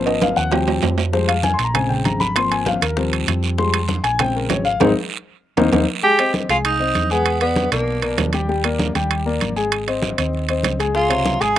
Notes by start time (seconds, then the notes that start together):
Already playing: G#1 F3 A#3 C4
0.06 D#5, high bongo, high conga, high timbale
0.21 F5, high bongo, high conga, high timbale, short guiro
0.36 D#2 F#5, high bongo, high conga, short guiro
0.51 F3 G3 C4 G5, high bongo, high conga, low timbale, long guiro
0.67 high conga, low timbale
0.82 F2, high bongo, low bongo, high conga, low timbale, short guiro
0.98 high bongo, high conga, low timbale, short guiro
1.12 F3 G3 G#3 C5, high bongo, high conga, long guiro
1.28 F5, high bongo, high conga, high timbale
1.43 G#5, high bongo, high conga, short guiro
1.54 C6
1.59 A#1, high bongo, high timbale, short guiro
1.64 A#5
1.74 C#3 G#3 C4 G#5, high bongo, high conga, low conga, high timbale, long guiro
1.89 G5, high conga, low conga
2.05 G#1 A#5, high bongo, low bongo, high conga, high timbale, short guiro
2.20 B5, high bongo, high conga, short guiro
2.36 F3 A#3 C4 C6, high bongo, high conga, high timbale, long guiro
2.51 G#5, high bongo, high conga, high timbale
2.66 F5, high bongo, high conga, short guiro
2.81 D#2 A#4, high bongo, high conga, high timbale, short guiro
2.97 F3 G3 C4, high bongo, high conga, long guiro
3.13 high conga, high timbale
3.27 F2, high bongo, low bongo, high conga, high timbale, short guiro
3.43 high bongo, high conga, short guiro
3.58 F3 G3 G#3 C6, high bongo, high conga, long guiro
3.74 high bongo, high conga, high timbale
3.88 high bongo, high conga, short guiro
4.03 A#1 G#5, high bongo, high timbale, short guiro
4.19 C#3 G#3 C4 G5, high bongo, high conga, low conga, high timbale, long guiro
4.35 A#4, high conga
4.49 G#1 C#5, high bongo, low bongo, high conga, high timbale, low timbale, short guiro
4.65 F5, high bongo, short guiro
4.80 G#1 G#3 C4 D#4, low bongo, high conga, high timbale, long guiro
5.57 D#2 A#3 C4 D#4, low bongo, high conga, high timbale, long guiro
5.72 D#2 A#3 C4 D#4, low bongo, high conga, high timbale, long guiro
6.03 G#3 G4 G#4 G#5, high conga, long guiro
6.19 C4 C5 D#5, high conga, high timbale
6.34 high conga, short guiro
6.49 C2 G#3 F4 G#4 G#5, high conga, high timbale, short guiro
6.65 D#4, high conga, high timbale, long guiro
6.80 C4 C5 D#5, high conga
6.95 E2, high conga, high timbale, short guiro
7.10 G#3 B3 G#4 G#5, short guiro
7.26 high conga, high timbale, long guiro
7.41 B3 B4 D5, high conga, high timbale
7.56 high conga, short guiro
7.72 B1 B2 A#3 A#4 D5, high conga, high timbale, short guiro
7.87 high conga, long guiro
8.02 B2 A#4 D5, high conga, high timbale
8.18 D#2, high conga, high timbale, low timbale, short guiro
8.33 G3 G4 G5, high conga, high timbale, short guiro
8.49 G3 G4 G5, high conga, long guiro
8.64 A#3 A#4 D5, high conga, high timbale
8.79 high conga, short guiro
8.95 D#2 G3 G4 G5, high conga, high timbale, short guiro
9.11 high conga, high timbale, long guiro
9.26 A#3 A#4 D5, high conga
9.41 G#1, high conga, high timbale, short guiro
9.56 G#3 G#4 G#5, short guiro
9.72 high conga, high timbale, long guiro
9.87 C4 C5 D#5, high conga, high timbale
10.02 high conga, short guiro
10.18 D#2 C4 C5 D#5, high conga, high timbale, short guiro
10.33 high conga, long guiro
10.48 C4 C5 D#5, high conga, high timbale
10.63 C#2, high conga, high timbale, low timbale, short guiro
10.79 G#3 G#4 G#5, high conga, high timbale, short guiro
10.94 G#3 F4 G#4 G#5, high bongo, high conga, long guiro
11.09 C3 C5 C#5, high bongo, high conga, high timbale
11.25 high bongo, high conga, short guiro
11.40 G#1 G#3 G#4 G#5, high bongo, high conga, high timbale, short guiro